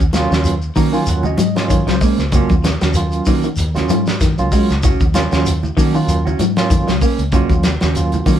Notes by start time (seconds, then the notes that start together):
0.00 D#2, kick, closed hi-hat, shekere
0.13 C3 F#3 A#3 C#4 F4, snare, closed hi-hat, high conga, shekere
0.30 D#2 C#3 C#4 F#4, snare, closed hi-hat, shekere
0.44 closed hi-hat, high conga, shekere
0.62 shekere
0.76 D#3 A#3 C#4 F#4 A#5, kick, open hi-hat, high conga, shekere
0.92 D#3 F#3 A#3 C#4 F4 G#5, shekere
1.06 D#2 F#5, closed hi-hat, high conga, shekere
1.23 C#4 F#4 D#5, low conga, shekere
1.38 G#2 F#3, closed hi-hat, high conga, shekere
1.55 F#3 A#3 C#4 F4, snare, closed hi-hat, shekere
1.69 D#3 C#5, kick, closed hi-hat, high conga, shekere
1.87 C#2 F#3 C5, snare, closed hi-hat, shekere
2.01 G#3 A#3 C#4, kick, open hi-hat, shekere
2.18 C#2, snare, closed hi-hat, shekere
2.32 C#3 F#3 A#3 C#4 F4 F#4, kick, closed hi-hat, high conga, low conga, shekere
2.49 D#2, kick, closed hi-hat, high conga, shekere
2.64 C3, snare, closed hi-hat, high conga, shekere
2.81 D#2 C#3 C#4 F#4, snare, closed hi-hat, shekere
2.94 F#3 A#3 C#4 F4, closed hi-hat, high conga, shekere
3.11 closed hi-hat, shekere
3.25 D#3 A#3 C#4 F#4, kick, open hi-hat, high conga, shekere
3.43 D#3, closed hi-hat, shekere
3.56 D#2, closed hi-hat, high conga, shekere
3.74 F#3 A#3 C#4 F4 F#4, snare, closed hi-hat, low conga, shekere
3.89 G#2 F#3, closed hi-hat, high conga, shekere
4.06 snare, closed hi-hat, shekere
4.21 D#3, kick, snare, closed hi-hat, high conga, shekere
4.38 C#2 F#3 A#3 C#4 F4, closed hi-hat, shekere
4.52 G#3 C#4 F#4, kick, open hi-hat, shekere
4.70 C#2, snare, closed hi-hat, shekere
4.83 C#3 C#4 F#4, muted clean electric guitar stroke, kick, closed hi-hat, high conga, low conga, shekere
5.00 D#2, kick, closed hi-hat, high conga, shekere
5.14 C3 F#3 A#3 C#4 F4, snare, closed hi-hat, high conga, shekere
5.31 D#2 C#3 C#4 F#4, snare, closed hi-hat, shekere
5.46 closed hi-hat, high conga, shekere
5.63 low conga, shekere
5.77 D#3 A#3 C#4 F#4, kick, open hi-hat, high conga, shekere
5.94 D#3 F#3 A#3 C#4 F4, shekere
6.07 D#2, closed hi-hat, shekere
6.25 C#4 F#4, low conga, shekere
6.39 G#2 F#3, closed hi-hat, high conga, shekere
6.56 F#3 A#3 C#4 F4, snare, closed hi-hat, shekere
6.70 D#3, kick, closed hi-hat, high conga, shekere
6.88 C#2 F#3, snare, closed hi-hat, shekere
7.01 A#3 C#4, muted clean electric guitar stroke, kick, open hi-hat, shekere
7.18 C#2, closed hi-hat, shekere
7.32 C#3 F#3 A#3 C#4 F4 F#4, kick, closed hi-hat, high conga, low conga, shekere
7.49 D#2, kick, closed hi-hat, high conga, shekere
7.63 C3, snare, closed hi-hat, high conga, shekere
7.81 D#2 C#3 C#4 F#4, snare, closed hi-hat, shekere
7.95 F#3 A#3 C#4 F4, closed hi-hat, high conga, shekere
8.12 closed hi-hat, low conga, shekere
8.26 D#3 A#3 C#4 F#4, kick, open hi-hat, high conga, shekere